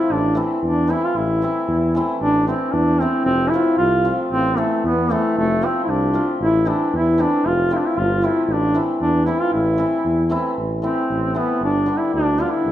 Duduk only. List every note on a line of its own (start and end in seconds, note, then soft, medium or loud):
0.00 0.14 E4 medium
0.13 0.38 D4 medium
0.65 0.92 D4 medium
0.90 1.07 E4 medium
1.05 1.19 F4 medium
1.17 1.95 E4 medium
2.21 2.46 D4 loud
2.48 2.74 C4 medium
2.72 3.02 D4 loud
3.01 3.24 C4 medium
3.25 3.51 C4 loud
3.50 3.77 E4 medium
3.78 4.15 F4 loud
4.31 4.59 C4 loud
4.58 4.84 A3 medium
4.85 5.13 B3 medium
5.12 5.37 A3 medium
5.38 5.66 A3 loud
5.64 5.82 C4 medium
5.84 5.91 E4 medium
5.90 6.29 D4 medium
6.42 6.71 E4 loud
6.69 6.94 D4 medium
6.96 7.22 E4 loud
7.21 7.49 D4 medium
7.47 7.75 F4 loud
7.73 7.79 E4 medium
7.77 7.88 D4 medium
7.86 8.00 E4 medium
7.99 8.27 F4 medium
8.25 8.43 E4 medium
8.43 8.54 E4 medium
8.52 8.77 D4 loud
9.02 9.25 D4 medium
9.26 9.43 E4 medium
9.41 9.52 F4 loud
9.52 10.27 E4 medium
10.83 11.39 C4 medium
11.37 11.63 B3 medium
11.64 11.99 D4 medium
11.97 12.13 E4 medium
12.14 12.43 D4 loud
12.41 12.52 F4 medium
12.51 12.72 E4 medium